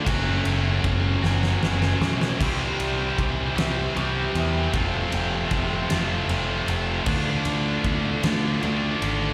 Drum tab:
CC |------------|x-----------|------------|x-----------|
RD |x-x-x-------|x-x-x-x-x-x-|x-x-x-x-x-x-|--x-x-x-x-x-|
SD |------oooooo|------o-----|------o-----|------o-----|
BD |o---o-------|o---o-------|o---o-------|o---o-------|